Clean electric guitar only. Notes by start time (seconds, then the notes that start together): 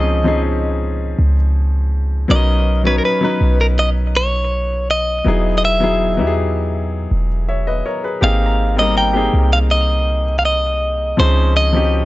Already playing: D#5
2.31 D#5
2.87 B4
2.98 A#4
3.05 B4
3.61 A#4
3.79 D#5
4.17 C#5
4.91 D#5
5.58 D#5
5.65 E5
8.24 F5
8.79 D#5
8.98 G5
9.53 F5
9.71 D#5
10.39 F5
10.45 D#5
11.20 C5
11.57 D#5